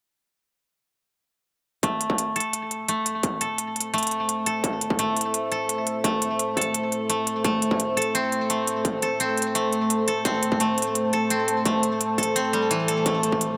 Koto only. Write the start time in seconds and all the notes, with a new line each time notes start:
1.83 A3
2.36 A4
2.88 A3
3.41 A4
3.94 A3
4.46 A4
4.99 A3
5.52 A4
6.04 A3
6.57 A4
7.10 A3
7.44 A3
7.97 A4
8.15 C4
8.50 A3
9.03 A4
9.20 C4
9.55 A3
10.08 A4
10.25 C4
10.60 A3
11.13 A4
11.31 C4
11.66 A3
12.18 A4
12.36 C4
12.53 G3
12.71 E3
12.88 A4
13.06 A3